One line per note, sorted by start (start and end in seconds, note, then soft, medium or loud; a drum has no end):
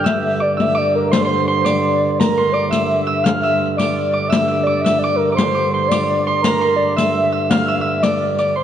0.00 0.40 D6 medium
0.00 0.10 F6 medium
0.00 0.91 G6 medium
0.04 4.29 G2 medium
0.04 4.30 D3 medium
0.04 0.43 E5 loud
0.04 0.56 E6 medium
0.04 riq medium
0.40 0.62 D5 medium
0.40 0.74 D6 medium
0.57 0.79 E5 medium
0.57 1.71 E6 medium
0.57 riq soft
0.75 0.95 D5 medium
0.75 1.64 D6 medium
0.95 1.12 A#4 medium
1.11 1.23 C5 medium
1.11 1.24 C6 medium
1.11 riq medium
1.21 1.28 D5 medium
1.21 1.47 C6 medium
1.27 1.48 C5 medium
1.48 1.67 C5 medium
1.48 2.37 C6 medium
1.65 2.20 D5 medium
1.65 2.53 D6 medium
1.65 riq soft
2.18 2.54 A#4 medium
2.18 3.60 A#5 medium
2.18 riq medium
2.38 3.68 C6 medium
2.52 2.69 D5 medium
2.52 3.75 D6 medium
2.70 3.25 E5 loud
2.70 3.07 E6 medium
2.70 riq medium
3.07 3.30 E6 medium
3.23 3.42 F5 loud
3.23 3.49 F6 medium
3.23 riq medium
3.40 3.76 E5 loud
3.40 4.29 E6 medium
3.77 4.11 D5 medium
3.77 4.13 D6 medium
3.77 riq medium
4.11 4.29 D5 medium
4.11 4.66 D6 medium
4.28 8.55 G2 medium
4.28 8.55 D3 medium
4.28 4.63 E5 loud
4.28 4.47 E6 medium
4.32 riq medium
4.48 4.84 E6 medium
4.63 4.82 D5 medium
4.63 5.03 D6 medium
4.81 4.98 E5 medium
4.81 5.98 E6 medium
4.86 riq medium
4.99 5.17 D5 medium
5.03 5.31 D6 medium
5.15 5.34 A#4 medium
5.32 5.69 C5 loud
5.32 5.54 D6 medium
5.37 5.73 C6 medium
5.37 riq medium
5.54 5.91 D6 medium
5.70 5.89 C5 medium
5.70 6.26 C6 medium
5.87 6.41 D5 loud
5.87 riq medium
5.92 7.13 D6 medium
6.27 6.61 C6 medium
6.42 6.76 A#4 loud
6.42 7.85 A#5 medium
6.42 riq medium
6.61 7.92 C6 medium
6.76 6.94 D5 medium
6.96 7.46 E5 loud
6.96 7.32 E6 medium
6.96 riq medium
7.32 7.56 E6 medium
7.50 7.65 F5 loud
7.50 7.74 F6 medium
7.50 riq medium
7.66 7.76 E5 loud
7.66 7.81 E6 medium
7.75 7.82 F5 medium
7.80 8.04 E5 loud
7.80 8.64 E6 medium
8.02 8.38 D5 loud
8.02 8.38 D6 medium
8.02 riq medium
8.39 8.55 D5 medium
8.39 8.64 D6 medium
8.39 riq soft
8.56 8.64 G2 medium
8.56 8.64 D3 medium
8.56 8.64 C5 medium
8.56 8.64 C6 medium